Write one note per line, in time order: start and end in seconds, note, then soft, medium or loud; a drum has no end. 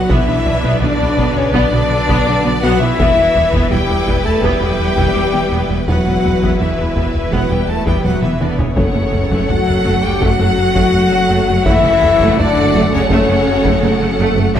0.00 0.10 F#4 loud
0.00 sub drop medium
0.09 0.17 B1 loud
0.09 3.00 B1 medium
0.09 0.21 B2 loud
0.09 0.82 E3 medium
0.09 2.96 F#3 medium
0.09 0.26 B3 medium
0.09 0.21 B3 loud
0.09 2.96 B3 medium
0.09 2.95 D4 medium
0.09 0.82 E4 loud
0.09 2.95 B4 medium
0.09 2.96 B4 medium
0.09 2.96 D5 medium
0.09 0.82 E5 loud
0.09 taiko loud
0.28 0.35 B1 medium
0.28 0.39 B2 medium
0.28 0.35 B3 medium
0.28 0.39 D4 medium
0.45 0.53 B1 medium
0.45 0.57 B2 medium
0.45 0.53 B3 medium
0.45 0.57 D4 medium
0.45 taiko low medium
0.63 0.71 B1 loud
0.63 0.75 B2 loud
0.63 0.80 B3 medium
0.63 0.75 B3 medium
0.63 taiko medium
0.81 0.89 B1 medium
0.81 0.93 B2 medium
0.81 1.36 D3 medium
0.81 0.89 B3 medium
0.81 1.35 D4 loud
0.81 0.93 B4 medium
0.81 1.36 D5 medium
0.81 taiko low medium
0.99 1.07 B1 medium
0.99 1.11 B2 medium
0.99 1.07 B3 medium
0.99 1.11 B4 medium
0.99 taiko low medium
1.17 1.25 B1 loud
1.17 1.29 B2 loud
1.17 1.35 B3 medium
1.17 1.30 B3 loud
1.17 taiko medium
1.36 1.47 B2 medium
1.36 1.54 C#3 medium
1.36 1.55 C#4 loud
1.36 1.54 C#5 medium
1.36 taiko low medium
1.54 1.61 B1 loud
1.54 1.65 B2 loud
1.54 2.63 D3 medium
1.54 1.65 B3 medium
1.54 1.71 B3 loud
1.54 2.60 D4 loud
1.54 2.61 D5 loud
1.54 taiko medium
1.72 1.80 B1 medium
1.72 1.83 B2 medium
1.72 1.79 B3 medium
1.72 1.83 D4 medium
1.90 2.01 B2 medium
2.08 2.15 B1 loud
2.08 2.20 B2 loud
2.08 2.25 B3 medium
2.08 2.20 B3 loud
2.08 taiko medium
2.26 2.33 B1 medium
2.26 2.38 B2 medium
2.26 2.34 B3 medium
2.26 2.38 D4 medium
2.44 2.51 B1 medium
2.44 2.52 B3 medium
2.44 2.55 B3 medium
2.44 2.56 F#4 medium
2.62 2.70 B1 loud
2.62 2.74 B2 loud
2.62 2.81 F#3 medium
2.62 2.79 B3 loud
2.62 2.74 B3 loud
2.62 2.80 F#4 loud
2.62 2.81 F#5 loud
2.80 2.88 B1 medium
2.80 2.92 B2 medium
2.80 3.69 E3 loud
2.80 2.88 B3 medium
2.80 3.71 E4 loud
2.80 2.92 B4 medium
2.80 3.71 E5 loud
2.98 5.87 E1 medium
2.98 3.06 E1 loud
2.98 3.09 E2 loud
2.98 5.86 E3 medium
2.98 3.10 E3 loud
2.98 5.84 B3 medium
2.98 3.16 B3 medium
2.98 5.84 E4 medium
2.98 5.84 B4 medium
2.98 5.87 E5 medium
2.98 taiko loud
3.16 3.24 E1 medium
3.16 3.28 E2 medium
3.16 3.28 G3 medium
3.16 3.24 B3 medium
3.34 3.42 E1 medium
3.34 3.45 E2 medium
3.34 3.46 G3 medium
3.34 3.42 B3 medium
3.34 taiko low medium
3.52 3.60 E1 loud
3.52 3.64 E2 loud
3.52 3.64 E3 loud
3.52 3.70 B3 loud
3.52 taiko medium
3.71 3.78 E1 medium
3.71 3.82 E2 medium
3.71 4.25 G3 medium
3.71 3.79 B3 medium
3.71 3.82 E4 medium
3.71 4.24 G4 loud
3.71 4.24 G5 loud
3.71 taiko low medium
3.88 3.96 E1 medium
3.88 4.00 E2 medium
3.88 3.97 B3 medium
3.88 4.01 E4 medium
3.88 taiko low medium
4.07 4.14 E1 medium
4.07 4.18 E2 loud
4.07 4.18 E3 loud
4.07 4.24 B3 medium
4.07 taiko medium
4.25 4.36 E2 medium
4.25 4.43 A3 medium
4.25 4.43 A4 loud
4.25 4.43 A5 medium
4.25 taiko low medium
4.43 4.51 E1 loud
4.43 4.54 E2 loud
4.43 4.54 E3 loud
4.43 5.88 G3 medium
4.43 4.60 B3 medium
4.43 5.71 G4 loud
4.43 5.88 G5 medium
4.43 taiko medium
4.62 4.69 E1 medium
4.62 4.72 E2 medium
4.62 4.73 G3 medium
4.62 4.69 B3 medium
4.79 4.90 E2 medium
4.97 5.05 E1 medium
4.97 5.08 E2 loud
4.97 5.09 E3 loud
4.97 5.15 B3 medium
4.97 taiko medium
5.15 5.23 E1 medium
5.15 5.27 E2 medium
5.15 5.27 G3 medium
5.15 5.24 B3 medium
5.33 5.41 E1 medium
5.33 5.45 E3 medium
5.33 5.44 B3 medium
5.33 5.41 B3 medium
5.52 5.59 E1 medium
5.52 5.63 E2 medium
5.52 5.63 E3 medium
5.52 5.69 B3 medium
5.70 5.78 E1 medium
5.70 5.81 E2 medium
5.70 5.78 B3 medium
5.70 5.81 E4 medium
5.87 8.79 E1 medium
5.87 5.95 E1 medium
5.87 5.99 E2 loud
5.87 8.73 E3 medium
5.87 5.99 E3 medium
5.87 6.59 F#3 medium
5.87 8.73 B3 medium
5.87 6.05 B3 medium
5.87 8.53 E4 medium
5.87 6.59 F#4 medium
5.87 8.53 B4 medium
5.87 8.73 B4 medium
5.87 8.73 E5 medium
5.87 6.59 F#5 medium
5.87 taiko loud
6.06 6.13 E1 medium
6.06 6.17 E2 medium
6.06 6.17 G3 medium
6.06 6.13 B3 soft
6.24 6.32 E1 medium
6.24 6.35 E2 medium
6.24 6.35 G3 medium
6.24 6.32 B3 soft
6.24 taiko low medium
6.42 6.49 E1 medium
6.42 6.53 E2 loud
6.42 6.53 E3 medium
6.42 6.59 B3 medium
6.42 taiko medium
6.60 6.68 E1 medium
6.60 6.72 E2 medium
6.60 7.33 E3 medium
6.60 6.68 B3 medium
6.60 6.72 E4 medium
6.60 7.33 E4 medium
6.60 7.31 E5 medium
6.60 taiko low medium
6.78 6.86 E1 soft
6.78 6.90 E2 medium
6.78 6.86 B3 soft
6.78 6.90 E4 medium
6.78 taiko low soft
6.96 7.04 E1 medium
6.96 7.07 E2 medium
6.96 7.08 E3 loud
6.96 7.14 B3 medium
6.96 taiko medium
7.15 7.26 E2 medium
7.15 taiko low medium
7.32 7.40 E1 medium
7.32 7.43 E2 loud
7.32 7.43 E3 loud
7.32 7.51 F#3 medium
7.32 7.49 B3 medium
7.32 7.51 F#4 medium
7.32 7.51 F#5 medium
7.32 taiko medium
7.50 7.58 E1 soft
7.50 7.62 E2 medium
7.50 7.69 G3 medium
7.50 7.62 G3 medium
7.50 7.58 B3 medium
7.50 7.70 G4 medium
7.50 7.69 G5 medium
7.69 7.80 E2 medium
7.69 7.87 A3 medium
7.69 7.87 A4 medium
7.69 7.87 A5 medium
7.86 7.94 E1 medium
7.86 7.98 E2 loud
7.86 7.98 E3 loud
7.86 8.05 G3 medium
7.86 8.04 B3 medium
7.86 8.05 G4 medium
7.86 8.05 G5 medium
7.86 taiko medium
8.04 8.12 E1 medium
8.04 8.16 E2 medium
8.04 8.23 F#3 medium
8.04 8.16 G3 medium
8.04 8.12 B3 medium
8.04 8.23 F#4 medium
8.04 8.23 F#5 medium
8.04 taiko high medium
8.22 8.30 E1 soft
8.22 8.34 E3 medium
8.22 8.41 E3 medium
8.22 8.33 B3 medium
8.22 8.31 B3 medium
8.22 8.41 E4 medium
8.22 8.41 E5 medium
8.22 taiko mid medium
8.41 8.48 E1 medium
8.41 8.52 E2 loud
8.41 8.59 D3 medium
8.41 8.52 E3 medium
8.41 8.58 B3 medium
8.41 8.59 D4 medium
8.41 8.59 D5 medium
8.41 taiko mid medium
8.59 8.66 E1 medium
8.59 8.70 E2 medium
8.59 9.50 C#3 medium
8.59 8.66 B3 medium
8.59 9.50 C#4 medium
8.59 8.70 E4 medium
8.59 9.49 C#5 medium
8.59 taiko low medium
8.77 8.84 F#1 medium
8.77 11.66 F#1 medium
8.77 8.88 F#2 loud
8.77 8.88 F#3 medium
8.77 11.66 F#3 medium
8.77 8.94 A3 medium
8.77 11.66 A3 medium
8.77 11.66 F#4 medium
8.77 11.62 A4 medium
8.77 11.67 C#5 medium
8.77 11.62 F#5 medium
8.77 taiko loud
8.95 9.03 F#1 medium
8.95 9.06 F#2 medium
8.95 9.06 A3 medium
8.95 9.03 A3 medium
9.13 9.21 F#1 medium
9.13 9.24 F#2 medium
9.13 9.24 A3 medium
9.13 9.21 A3 medium
9.13 taiko low medium
9.31 9.39 F#1 loud
9.31 9.42 F#2 loud
9.31 9.42 F#3 loud
9.31 9.48 A3 medium
9.31 taiko medium
9.49 9.57 F#1 medium
9.49 9.61 F#2 medium
9.49 10.03 F#3 medium
9.49 9.57 A3 medium
9.49 10.04 F#4 loud
9.49 9.60 F#4 medium
9.49 10.04 F#5 medium
9.49 taiko low medium
9.67 9.75 F#1 medium
9.67 9.79 F#2 medium
9.67 9.75 A3 medium
9.67 9.78 F#4 medium
9.67 taiko low medium
9.85 9.93 F#1 medium
9.85 9.96 F#2 medium
9.85 9.96 F#3 loud
9.85 10.02 A3 medium
9.85 taiko medium
10.03 10.15 F#2 medium
10.03 10.22 G3 medium
10.03 10.22 G4 loud
10.03 10.22 G5 medium
10.03 taiko low medium
10.21 10.29 F#1 loud
10.21 10.32 F#2 loud
10.21 10.32 F#3 medium
10.21 11.63 F#3 medium
10.21 10.39 A3 medium
10.21 11.66 F#4 loud
10.21 11.67 F#5 loud
10.21 taiko medium
10.39 10.47 F#1 medium
10.39 10.50 F#2 medium
10.39 10.50 A3 medium
10.39 10.47 A3 medium
10.58 10.69 F#2 medium
10.75 10.83 F#1 medium
10.75 10.87 F#2 loud
10.75 10.87 F#3 loud
10.75 10.93 A3 medium
10.75 taiko medium
10.94 11.01 F#1 medium
10.94 11.05 F#2 medium
10.94 11.05 A3 medium
10.94 11.02 A3 medium
11.11 11.19 F#1 medium
11.11 11.23 F#3 medium
11.11 11.20 A3 medium
11.11 11.23 C#4 medium
11.30 11.37 F#1 medium
11.30 11.41 F#2 loud
11.30 11.41 F#3 loud
11.30 11.47 A3 medium
11.48 11.55 F#1 medium
11.48 11.59 F#2 medium
11.48 11.56 A3 medium
11.48 11.60 F#4 medium
11.65 11.73 F#1 loud
11.65 14.57 F#1 medium
11.65 11.77 F#2 loud
11.65 12.38 E3 loud
11.65 11.77 F#3 loud
11.65 14.52 F#3 medium
11.65 11.84 A3 medium
11.65 14.60 A3 medium
11.65 12.37 E4 loud
11.65 14.52 F#4 medium
11.65 14.60 A4 medium
11.65 12.39 E5 loud
11.65 14.51 F#5 medium
11.65 taiko loud
11.84 11.91 F#1 medium
11.84 11.95 F#2 medium
11.84 11.95 A3 medium
11.84 11.92 A3 medium
12.02 12.09 F#1 medium
12.02 12.13 F#2 medium
12.02 12.14 A3 medium
12.02 12.10 A3 medium
12.02 taiko low medium
12.20 12.27 F#1 loud
12.20 12.31 F#2 loud
12.20 12.32 F#3 loud
12.20 12.38 A3 loud
12.20 taiko loud
12.38 12.45 F#1 medium
12.38 12.49 F#2 medium
12.38 12.93 D3 loud
12.38 12.46 A3 medium
12.38 12.93 D4 loud
12.38 12.50 F#4 medium
12.38 12.92 D5 loud
12.38 taiko low medium
12.56 12.63 F#1 medium
12.56 12.67 F#2 medium
12.56 12.64 A3 medium
12.56 12.68 F#4 medium
12.56 taiko low medium
12.74 12.81 F#1 loud
12.74 12.85 F#2 loud
12.74 12.86 F#3 loud
12.74 12.92 A3 loud
12.74 taiko medium
12.92 13.04 F#2 medium
12.92 13.10 C#3 loud
12.92 13.09 C#4 loud
12.92 13.09 C#5 medium
12.92 taiko low medium
13.10 13.17 F#1 loud
13.10 13.21 F#2 loud
13.10 14.17 C#3 loud
13.10 13.22 F#3 loud
13.10 13.28 A3 loud
13.10 14.17 C#4 loud
13.10 14.17 C#5 loud
13.10 taiko medium
13.28 13.36 F#1 medium
13.28 13.40 F#2 medium
13.28 13.40 A3 medium
13.28 13.36 A3 medium
13.47 13.58 F#2 medium
13.64 13.72 F#1 loud
13.64 13.76 F#2 loud
13.64 13.76 F#3 loud
13.64 13.82 A3 medium
13.64 taiko medium
13.83 13.90 F#1 medium
13.83 13.94 F#2 medium
13.83 13.91 A3 loud
13.83 13.94 A3 medium
14.01 14.08 F#1 medium
14.01 14.12 F#3 medium
14.01 14.09 A3 loud
14.01 14.13 C#4 medium
14.19 14.26 F#1 loud
14.19 14.30 F#2 loud
14.19 14.31 F#3 loud
14.19 14.37 A3 loud
14.37 14.45 F#1 medium
14.37 14.49 F#2 medium
14.37 14.45 A3 loud
14.37 14.49 F#4 medium
14.55 14.60 A1 medium
14.55 14.60 A1 loud
14.55 14.60 A2 loud
14.55 14.60 E3 loud
14.55 14.60 A3 loud
14.55 14.60 E4 loud
14.55 14.60 E5 loud
14.55 14.60 E5 medium
14.55 taiko loud